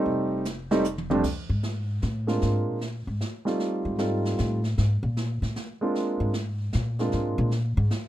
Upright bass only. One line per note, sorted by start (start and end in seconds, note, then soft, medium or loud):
0.06 1.19 F1 medium
1.49 1.98 G#2 medium
2.03 2.39 A2 medium
2.43 2.68 G#2 medium
2.68 3.07 A#2 medium
3.07 3.20 G#2 medium
3.85 4.34 G#2 medium
4.40 4.75 A2 medium
4.78 5.02 G#2 medium
5.03 5.39 A#2 medium
5.42 5.55 A2 medium
6.20 6.69 G#2 medium
6.75 7.10 A#2 medium
7.13 7.37 G#2 medium
7.38 7.74 A#2 medium
7.77 7.90 G#2 medium